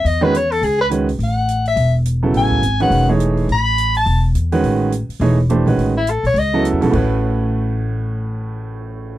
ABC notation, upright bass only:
X:1
M:4/4
L:1/8
Q:"Swing" 1/4=209
K:Alyd
V:1 name="Upright bass" clef=bass
E,,4 C,,4 | A,,,4 E,,,4 | A,,,2 G,,,2 E,,,4 | A,,,4 E,,,2 E,,2 |
A,,,3 z E,,,3 _B,,, | A,,,3 _B,,, C,,2- (3C,, E,, =B,,, | A,,,8- | A,,,8 |]